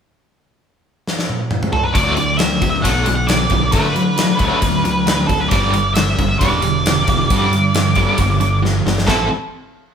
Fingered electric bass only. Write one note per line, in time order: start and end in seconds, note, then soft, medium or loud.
1.95 2.58 D2 medium
2.63 2.83 D2 medium
2.85 3.47 B1 medium
3.51 3.72 B1 medium
3.74 4.41 D3 medium
4.40 4.50 D2 medium
4.62 5.25 D2 medium
5.30 5.50 D2 medium
5.52 6.15 G1 medium
6.19 6.39 G1 medium
6.41 7.04 E1 medium
7.08 7.29 E1 medium
7.31 7.98 G2 loud
7.97 8.07 G1 medium
8.19 8.82 G1 loud
8.85 9.06 G1 medium
9.08 9.29 A1 medium